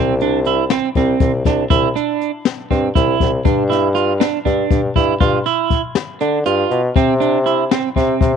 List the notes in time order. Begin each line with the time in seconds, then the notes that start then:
Already playing: C2 C4
0.20 D4, closed hi-hat
0.45 E4, closed hi-hat
0.70 C4, snare, closed hi-hat
0.95 C2 C4, kick, closed hi-hat
1.20 C2, kick, closed hi-hat
1.45 C2 D4, kick, snare, closed hi-hat
1.70 C2 E4, kick, closed hi-hat
1.96 D4, closed hi-hat
2.21 closed hi-hat
2.45 snare, closed hi-hat
2.70 G2 C4, kick, closed hi-hat
2.95 C2 E4, kick, closed hi-hat
3.20 C2, kick, closed hi-hat
3.45 G2 D4, kick, closed hi-hat
3.70 E4, snare, closed hi-hat
3.95 F4, closed hi-hat
4.20 D4, snare, closed hi-hat
4.45 G2 D4, kick, closed hi-hat
4.71 G2, kick, closed hi-hat
4.96 G2 E4, kick, closed hi-hat
5.21 G2 F4, kick, closed hi-hat
5.46 E4, closed hi-hat
5.70 kick, closed hi-hat
5.95 snare, closed hi-hat
6.20 D3 D4, closed hi-hat
6.45 G2 F4, closed hi-hat
6.70 B2, closed hi-hat
6.96 C3 C4, kick, closed hi-hat
7.20 D4, closed hi-hat
7.46 E4, closed hi-hat
7.71 C4, snare, closed hi-hat
7.96 C3 C4, kick, snare, closed hi-hat
8.21 C3, kick, closed hi-hat